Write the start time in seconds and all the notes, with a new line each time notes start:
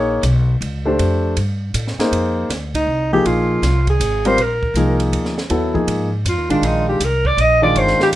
Already playing: A#1 A#3 D#4 G#4 C#5
0.23 B1, hi-hat pedal, ride
0.61 C#2, ride
0.85 A3 D4 G4 C5
0.99 F2, ride
1.37 G2, ride
1.74 A2, hi-hat pedal, ride
1.87 snare
1.98 A#3 D#4 G#4 C5, muted upright bass stroke, snare, ride
2.12 F2, ride
2.49 D2, snare, hi-hat pedal, ride
2.75 D#4, kick, ride
2.87 C2
3.12 F3 A#3 D#4 G4 G#4
3.25 A#1 F4, ride
3.62 C2, snare, hi-hat pedal, ride
3.87 G#4, kick, ride
4.00 G#1, hi-hat pedal, ride
4.25 G3 C4 F4 A#4 C5, ride
4.37 A#1, ride
4.42 A#4
4.63 kick
4.74 C2 F3 A#3 D#4 G#4, hi-hat pedal, ride
5.00 ride
5.12 D2, ride
5.25 snare
5.38 snare
5.50 D#2 F#3 B3 E4 A4, ride
5.74 F3 A#3 D#4 G#4, kick
5.87 G#2, ride
6.25 F2 F4, hi-hat pedal, ride
6.37 D#2
6.49 A#1 D#3 G#3 D4 F4, ride
6.62 A#1 D#4, ride
6.89 G4
7.00 C2, hi-hat pedal, ride
7.05 A#4
7.25 D5, kick
7.37 A#1 D#5, ride
7.61 D#3 G#3 D4 F4 D5
7.75 G1 C5, ride
7.88 snare
8.00 G4, muted upright bass stroke, snare
8.12 G#1